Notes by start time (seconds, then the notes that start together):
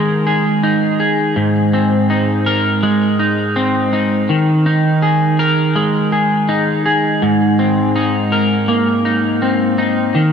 Already playing: D#3 G#3 D#4 G#4 A#4
0.27 G#4
0.63 D#4
1.00 G#4
1.36 G#2
1.73 C4
2.10 D#4
2.46 A#4
2.83 G#3
3.19 D#4
3.56 C4
3.93 D#4
4.29 D#3
4.66 D#4
5.02 G#4
5.39 A#4
5.76 G#3
6.12 G#4
6.49 D#4
6.86 G#4
7.22 G#2
7.59 C4
7.96 D#4
8.32 A#4
8.68 A#3
9.05 D#4
9.42 C4
9.78 D#4
10.15 D#3